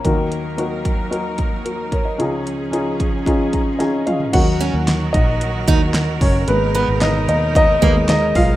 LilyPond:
<<
  \new Staff \with { instrumentName = "Grand piano" } { \time 4/4 \key ees \minor \tempo 4 = 112 << { bes''16 r2 r8. <ges' bes'>8 <bes' des''>16 ees''16~ | ees''16 r2 r16 bes''8 <ees'' aes''>8 <f' ees'' f''>8 | <ges' ges''>4 r8 <ees' ees''>2 <des' des''>8 | <ces' ces''>8 <ces' ces''>8 <ees' ees''>8 <ees' ees''>8 <ees' ees''>4 <ees' ees''>8 <f' f''>8 | } \\ { <bes ees' ges' bes'>8. r16 <bes ees' ges' bes'>8. r16 <bes ees' ges' bes'>8. r4 r16 | <des' ees' f' aes'>8. r16 <des' ees' f' aes'>8. r16 <des' ees' f' aes'>8. r16 <des' ees' f' aes'>8. r16 | r1 | r1 | } >> }
  \new Staff \with { instrumentName = "Grand piano" } { \clef bass \time 4/4 \key ees \minor <ees, ees>1 | <des, des>1 | <ges bes ees'>4. r2 r8 | <aes bes>4. r4 <aes bes ces'>8 r4 | }
  \new Staff \with { instrumentName = "Steel-string acoustic guitar" } { \time 4/4 \key ees \minor r1 | r1 | r8 des'16 r4. r16 ees'16 r4 r16 | r8 ces'16 r4. r16 bes16 r4 r16 | }
  \new Staff \with { instrumentName = "String section" } { \time 4/4 \key ees \minor << { <ges bes bes'>1 | <f des' aes'>1 | <ees ges ges'>1 | <ces aes ees'>1 | } \\ { ees'1~ | ees'1 | bes'1~ | bes'1 | } >> }
  \new Staff \with { instrumentName = "Fingered electric bass" } { \clef bass \time 4/4 \key ees \minor r1 | r1 | ees,8. ees,8. bes,,4 ees,4 ges,,8 | aes,,8. aes,,8. ees,4 ees,4 ces,8 | }
  \new DrumStaff \with { instrumentName = "Drums" } \drummode { \time 4/4 <hh bd>8 hh8 hh8 <hh bd>8 hh8 <hh bd>8 hh8 <hh bd>8 | hh8 hh8 hh8 <hh bd>8 <hh bd>8 <hh bd>8 <hh sn>8 <hh toml>16 tomfh16 | <cymc hh bd>8 hh8 <hc hh sn>8 <hh bd>8 hh8 <hh bd>8 <hc hh sn>8 <hho bd>8 | hh8 hh8 <hc hh sn>8 hh8 <hh bd>8 <hh bd>8 <hc hh sn>8 <hho bd>8 | }
>>